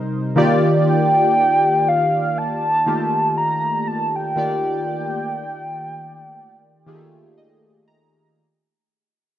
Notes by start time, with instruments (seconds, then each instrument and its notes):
0.36 synth keys D#3 A#3 F4 G4 D5
0.89 soft synth lead G5
1.88 soft synth lead F5
2.38 soft synth lead A5
2.86 synth keys D#3 A3 A#3 F4 G4
3.37 soft synth lead A#5
3.87 soft synth lead A5
4.16 soft synth lead G5
4.36 synth keys D#3 A#3 F4 G4 D5
6.86 synth keys D#3 A#3 F4 G4 G#4
6.95 synth keys A3
7.38 synth keys D#5
7.88 synth keys A#5